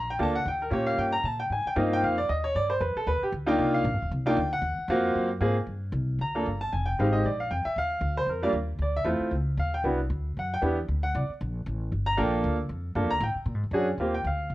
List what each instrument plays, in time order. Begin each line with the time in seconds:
Already playing: upright bass A#1, grand piano A#5
0.11 grand piano G5
0.19 upright bass D2, grand piano A#3 D4 F4 A4 A5
0.36 grand piano F#5
0.46 upright bass D#2, grand piano G5
0.62 grand piano A#4
0.71 upright bass A#2, grand piano A#3 C#4 F4 G4 C#5
0.87 grand piano F5
0.98 upright bass G2, grand piano G5
1.13 grand piano A#5
1.23 upright bass A#2, grand piano A5
1.40 grand piano G5
1.50 upright bass G#2, grand piano G#5
1.65 grand piano G5, muted upright bass stroke
1.76 upright bass G2, grand piano A#3 C4 D#4 F4 D#5
1.93 grand piano G5
2.03 upright bass F2, grand piano F5
2.18 grand piano D5
2.29 upright bass D#2, grand piano D#5
2.44 grand piano C#5
2.55 upright bass G2, grand piano D5
2.70 grand piano C5
2.80 upright bass F2, grand piano B4
2.95 grand piano A4, muted upright bass stroke
3.06 upright bass D#2, grand piano B4
3.22 grand piano G4, muted upright bass stroke
3.32 upright bass D2
3.46 grand piano A#3 D4 D#4 F4 G5
3.58 upright bass C2
3.74 grand piano F5
3.84 upright bass A#1
3.93 upright bass G1
4.02 upright bass D#1
4.11 upright bass C2
4.26 grand piano A#3 D4 D#4 F4 G5
4.36 upright bass D2
4.53 grand piano F#5
4.61 upright bass D#2
4.78 muted upright bass stroke
4.88 upright bass F2, grand piano A#3 C4 F4 F#4
5.15 upright bass F#2
5.41 upright bass G#2, grand piano A#3 C4 F4 G#4
5.67 upright bass G2
5.92 upright bass C2
6.19 upright bass D2, grand piano A#5
6.35 grand piano A#3 D4 F4 A4
6.46 upright bass G1
6.61 grand piano A5
6.72 upright bass F1, grand piano G#5
6.85 grand piano G5
6.98 upright bass G#1, grand piano G#3 C4 D#4 G4 F5
7.12 grand piano D#5
7.24 upright bass A#1, grand piano D5
7.40 grand piano F5
7.51 upright bass F2, grand piano G5
7.65 grand piano E5, muted upright bass stroke
7.76 upright bass D#2, grand piano F5
8.01 upright bass D2
8.18 grand piano C5
8.26 upright bass F2, grand piano A#4
8.43 grand piano G3 A#3 D4 F4 D5
8.53 upright bass D#2
8.78 upright bass D2, grand piano D5
8.96 grand piano E5
9.04 upright bass E2, grand piano A3 C4 E4 F4
9.19 muted upright bass stroke
9.31 upright bass C#2
9.57 upright bass D#2, grand piano F5
9.74 grand piano G5
9.84 upright bass C2, grand piano B3 D4 E4 F#4
10.10 upright bass D2
10.36 upright bass F#2, grand piano F#5
10.53 grand piano G5
10.61 upright bass E2, grand piano B3 D4 E4 G4
10.88 upright bass D2
11.03 grand piano F#5
11.14 upright bass C2, grand piano D5
11.29 muted upright bass stroke
11.40 upright bass A#1
11.66 upright bass A1
11.92 upright bass G1
12.06 grand piano A#5
12.17 upright bass A#1, grand piano A#3 D4 F4 A4 G5
12.44 upright bass D2
12.69 upright bass F2
12.95 upright bass G2, grand piano A#3 D4 F4 A4
13.04 upright bass F2
13.11 upright bass D2, grand piano A#5
13.20 upright bass A2, grand piano G5
13.35 muted upright bass stroke
13.46 upright bass A#2
13.55 upright bass G#2
13.64 upright bass F#2
13.71 upright bass F#2, grand piano C#4 D4 F#4 G#4
13.98 upright bass D#2, grand piano A#3 C4 F4 G4
14.15 grand piano G5
14.24 upright bass D2, grand piano F5
14.50 upright bass C2